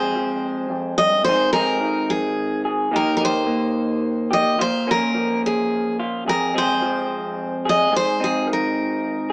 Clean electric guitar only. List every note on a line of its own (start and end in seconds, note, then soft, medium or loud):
0.00 0.69 F2 medium
0.00 1.26 G#3 soft
0.00 1.26 C4 soft
0.00 1.24 G#4 medium
0.15 1.23 F3 soft
0.70 0.98 F2 medium
0.99 1.26 G2 soft
1.26 2.89 G#2 medium
1.26 1.79 D#3 medium
1.26 1.53 C4 soft
1.26 1.54 D#4 soft
1.26 1.54 G#4 medium
1.54 2.89 C4 soft
1.54 2.89 D#4 soft
1.54 2.64 G#4 medium
1.81 2.90 D#3 medium
2.65 2.89 G#4 medium
2.92 4.59 D#3 medium
2.92 3.46 A#3 soft
2.92 3.19 D#4 soft
2.92 3.20 G4 medium
3.20 4.56 D#4 soft
3.20 4.29 G4 soft
3.47 4.55 A#3 soft
4.31 4.56 G4 soft
4.58 6.26 A#2 medium
4.58 4.88 F4 medium
4.87 6.23 A#3 soft
4.87 6.23 C#4 soft
4.87 5.98 F4 soft
5.15 6.23 F3 soft
6.00 6.27 F4 medium
6.26 7.91 F2 medium
6.26 6.55 G#4 medium
6.54 8.19 G#3 soft
6.54 8.19 C4 soft
6.54 7.64 G#4 medium
6.82 7.89 F3 medium
7.65 7.89 G#4 medium
7.92 9.33 G#2 medium
7.92 9.29 G#4 medium
8.20 9.33 C4 soft
8.20 9.33 D#4 soft
8.47 9.33 D#3 medium